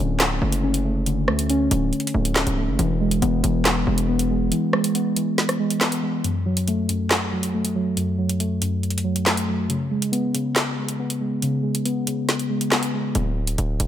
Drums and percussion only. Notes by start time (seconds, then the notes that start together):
0.20 snare, clap, closed hi-hat
0.52 closed hi-hat
0.74 closed hi-hat
1.06 closed hi-hat
1.28 cross-stick
1.39 closed hi-hat
1.50 closed hi-hat
1.71 closed hi-hat
1.93 closed hi-hat
2.00 closed hi-hat
2.07 closed hi-hat
2.25 closed hi-hat
2.36 snare, clap
2.47 closed hi-hat
2.79 closed hi-hat
3.11 closed hi-hat
3.22 closed hi-hat
3.44 closed hi-hat
3.65 snare, clap, closed hi-hat
3.98 closed hi-hat
4.19 closed hi-hat
4.52 closed hi-hat
4.73 cross-stick
4.84 closed hi-hat
4.95 closed hi-hat
5.16 closed hi-hat
5.38 snare, closed hi-hat
5.49 cross-stick, closed hi-hat
5.70 closed hi-hat
5.81 snare, clap
5.92 closed hi-hat
6.24 closed hi-hat
6.57 closed hi-hat
6.68 closed hi-hat
6.89 closed hi-hat
7.11 snare, clap, closed hi-hat
7.43 closed hi-hat
7.65 closed hi-hat
7.97 closed hi-hat
8.29 closed hi-hat
8.40 closed hi-hat
8.62 closed hi-hat
8.83 closed hi-hat
8.90 closed hi-hat
8.98 closed hi-hat
9.16 closed hi-hat
9.26 snare, clap
9.37 closed hi-hat
9.70 closed hi-hat
10.02 closed hi-hat
10.13 closed hi-hat
10.35 closed hi-hat
10.56 snare, clap, closed hi-hat
10.89 closed hi-hat
11.10 closed hi-hat
11.42 closed hi-hat
11.75 closed hi-hat
11.86 closed hi-hat
12.07 closed hi-hat
12.29 snare, closed hi-hat
12.39 closed hi-hat
12.61 closed hi-hat
12.72 snare, clap
12.83 closed hi-hat
13.15 closed hi-hat
13.47 closed hi-hat
13.58 closed hi-hat
13.80 closed hi-hat